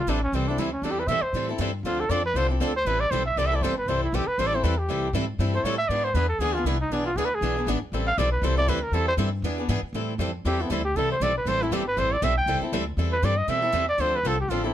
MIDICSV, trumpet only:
0, 0, Header, 1, 2, 480
1, 0, Start_track
1, 0, Key_signature, 0, "minor"
1, 0, Tempo, 252951
1, 1594, Time_signature, 4, 2, 24, 8
1, 27961, End_track
2, 0, Start_track
2, 0, Title_t, "Trumpet"
2, 0, Program_c, 0, 56
2, 0, Note_on_c, 0, 65, 81
2, 176, Note_on_c, 0, 62, 79
2, 205, Note_off_c, 0, 65, 0
2, 430, Note_off_c, 0, 62, 0
2, 441, Note_on_c, 0, 61, 81
2, 659, Note_on_c, 0, 60, 72
2, 688, Note_off_c, 0, 61, 0
2, 911, Note_on_c, 0, 62, 78
2, 940, Note_off_c, 0, 60, 0
2, 1126, Note_on_c, 0, 64, 70
2, 1155, Note_off_c, 0, 62, 0
2, 1358, Note_off_c, 0, 64, 0
2, 1370, Note_on_c, 0, 61, 72
2, 1588, Note_on_c, 0, 62, 76
2, 1616, Note_off_c, 0, 61, 0
2, 1736, Note_on_c, 0, 67, 87
2, 1764, Note_off_c, 0, 62, 0
2, 1893, Note_on_c, 0, 71, 70
2, 1922, Note_off_c, 0, 67, 0
2, 2046, Note_on_c, 0, 76, 107
2, 2075, Note_off_c, 0, 71, 0
2, 2322, Note_on_c, 0, 72, 83
2, 2351, Note_off_c, 0, 76, 0
2, 2813, Note_off_c, 0, 72, 0
2, 3526, Note_on_c, 0, 65, 82
2, 3802, Note_on_c, 0, 69, 85
2, 3831, Note_off_c, 0, 65, 0
2, 3988, Note_on_c, 0, 74, 108
2, 4017, Note_off_c, 0, 69, 0
2, 4262, Note_off_c, 0, 74, 0
2, 4286, Note_on_c, 0, 71, 91
2, 4492, Note_on_c, 0, 72, 93
2, 4520, Note_off_c, 0, 71, 0
2, 4731, Note_off_c, 0, 72, 0
2, 4743, Note_on_c, 0, 64, 36
2, 4994, Note_on_c, 0, 69, 74
2, 5023, Note_off_c, 0, 64, 0
2, 5239, Note_off_c, 0, 69, 0
2, 5251, Note_on_c, 0, 72, 98
2, 5447, Note_on_c, 0, 71, 89
2, 5475, Note_off_c, 0, 72, 0
2, 5704, Note_on_c, 0, 74, 94
2, 5732, Note_off_c, 0, 71, 0
2, 5902, Note_on_c, 0, 72, 90
2, 5930, Note_off_c, 0, 74, 0
2, 6178, Note_off_c, 0, 72, 0
2, 6191, Note_on_c, 0, 76, 83
2, 6421, Note_on_c, 0, 74, 89
2, 6449, Note_off_c, 0, 76, 0
2, 6570, Note_on_c, 0, 76, 94
2, 6599, Note_off_c, 0, 74, 0
2, 6745, Note_on_c, 0, 74, 70
2, 6774, Note_off_c, 0, 76, 0
2, 6885, Note_on_c, 0, 72, 81
2, 6914, Note_off_c, 0, 74, 0
2, 7150, Note_off_c, 0, 72, 0
2, 7173, Note_on_c, 0, 71, 85
2, 7373, Note_on_c, 0, 72, 100
2, 7401, Note_off_c, 0, 71, 0
2, 7633, Note_off_c, 0, 72, 0
2, 7666, Note_on_c, 0, 64, 74
2, 7878, Note_on_c, 0, 67, 84
2, 7906, Note_off_c, 0, 64, 0
2, 8112, Note_on_c, 0, 71, 87
2, 8141, Note_off_c, 0, 67, 0
2, 8336, Note_on_c, 0, 72, 94
2, 8364, Note_off_c, 0, 71, 0
2, 8482, Note_on_c, 0, 74, 90
2, 8511, Note_off_c, 0, 72, 0
2, 8640, Note_on_c, 0, 72, 75
2, 8669, Note_off_c, 0, 74, 0
2, 8804, Note_on_c, 0, 71, 69
2, 8833, Note_off_c, 0, 72, 0
2, 9073, Note_on_c, 0, 67, 85
2, 9102, Note_off_c, 0, 71, 0
2, 9757, Note_off_c, 0, 67, 0
2, 10533, Note_on_c, 0, 72, 88
2, 10704, Note_on_c, 0, 73, 75
2, 10732, Note_off_c, 0, 72, 0
2, 10964, Note_off_c, 0, 73, 0
2, 10976, Note_on_c, 0, 76, 104
2, 11168, Note_on_c, 0, 74, 90
2, 11197, Note_off_c, 0, 76, 0
2, 11467, Note_on_c, 0, 72, 88
2, 11496, Note_off_c, 0, 74, 0
2, 11663, Note_on_c, 0, 71, 94
2, 11691, Note_off_c, 0, 72, 0
2, 11922, Note_off_c, 0, 71, 0
2, 11933, Note_on_c, 0, 69, 79
2, 12140, Note_on_c, 0, 68, 77
2, 12169, Note_off_c, 0, 69, 0
2, 12407, Note_on_c, 0, 65, 79
2, 12435, Note_off_c, 0, 68, 0
2, 12643, Note_on_c, 0, 64, 68
2, 12671, Note_off_c, 0, 65, 0
2, 12907, Note_off_c, 0, 64, 0
2, 12923, Note_on_c, 0, 63, 80
2, 13145, Note_on_c, 0, 62, 73
2, 13174, Note_off_c, 0, 63, 0
2, 13386, Note_off_c, 0, 62, 0
2, 13397, Note_on_c, 0, 65, 77
2, 13605, Note_on_c, 0, 68, 85
2, 13633, Note_off_c, 0, 65, 0
2, 13764, Note_on_c, 0, 71, 82
2, 13792, Note_off_c, 0, 68, 0
2, 13946, Note_on_c, 0, 68, 76
2, 13975, Note_off_c, 0, 71, 0
2, 14657, Note_off_c, 0, 68, 0
2, 15326, Note_on_c, 0, 77, 93
2, 15532, Note_on_c, 0, 74, 98
2, 15561, Note_off_c, 0, 77, 0
2, 15774, Note_off_c, 0, 74, 0
2, 15786, Note_on_c, 0, 71, 74
2, 16028, Note_on_c, 0, 72, 80
2, 16056, Note_off_c, 0, 71, 0
2, 16274, Note_off_c, 0, 72, 0
2, 16285, Note_on_c, 0, 74, 106
2, 16491, Note_on_c, 0, 71, 78
2, 16519, Note_off_c, 0, 74, 0
2, 16759, Note_on_c, 0, 70, 89
2, 16787, Note_off_c, 0, 71, 0
2, 16963, Note_on_c, 0, 69, 97
2, 16991, Note_off_c, 0, 70, 0
2, 17225, Note_off_c, 0, 69, 0
2, 17235, Note_on_c, 0, 72, 99
2, 17355, Note_off_c, 0, 72, 0
2, 19856, Note_on_c, 0, 67, 84
2, 20156, Note_on_c, 0, 59, 51
2, 20184, Note_off_c, 0, 67, 0
2, 20329, Note_on_c, 0, 64, 70
2, 20357, Note_off_c, 0, 59, 0
2, 20577, Note_off_c, 0, 64, 0
2, 20588, Note_on_c, 0, 67, 88
2, 20812, Note_on_c, 0, 69, 92
2, 20841, Note_off_c, 0, 67, 0
2, 21070, Note_off_c, 0, 69, 0
2, 21097, Note_on_c, 0, 72, 91
2, 21306, Note_on_c, 0, 74, 111
2, 21334, Note_off_c, 0, 72, 0
2, 21557, Note_off_c, 0, 74, 0
2, 21587, Note_on_c, 0, 71, 83
2, 21790, Note_on_c, 0, 72, 102
2, 21818, Note_off_c, 0, 71, 0
2, 22061, Note_on_c, 0, 64, 79
2, 22089, Note_off_c, 0, 72, 0
2, 22264, Note_on_c, 0, 67, 73
2, 22293, Note_off_c, 0, 64, 0
2, 22517, Note_off_c, 0, 67, 0
2, 22534, Note_on_c, 0, 71, 89
2, 22750, Note_on_c, 0, 72, 96
2, 22779, Note_off_c, 0, 71, 0
2, 23032, Note_on_c, 0, 74, 92
2, 23060, Note_off_c, 0, 72, 0
2, 23224, Note_on_c, 0, 76, 103
2, 23253, Note_off_c, 0, 74, 0
2, 23477, Note_off_c, 0, 76, 0
2, 23489, Note_on_c, 0, 79, 93
2, 23922, Note_off_c, 0, 79, 0
2, 24912, Note_on_c, 0, 71, 92
2, 25138, Note_on_c, 0, 74, 98
2, 25167, Note_off_c, 0, 71, 0
2, 25378, Note_on_c, 0, 75, 94
2, 25407, Note_off_c, 0, 74, 0
2, 25605, Note_on_c, 0, 76, 111
2, 25633, Note_off_c, 0, 75, 0
2, 26346, Note_off_c, 0, 76, 0
2, 26357, Note_on_c, 0, 74, 92
2, 26586, Note_on_c, 0, 72, 93
2, 26614, Note_off_c, 0, 74, 0
2, 26869, Note_on_c, 0, 71, 89
2, 26897, Note_off_c, 0, 72, 0
2, 27090, Note_on_c, 0, 69, 97
2, 27119, Note_off_c, 0, 71, 0
2, 27326, Note_off_c, 0, 69, 0
2, 27338, Note_on_c, 0, 67, 79
2, 27511, Note_on_c, 0, 65, 79
2, 27540, Note_off_c, 0, 67, 0
2, 27777, Note_off_c, 0, 65, 0
2, 27788, Note_on_c, 0, 64, 70
2, 27961, Note_off_c, 0, 64, 0
2, 27961, End_track
0, 0, End_of_file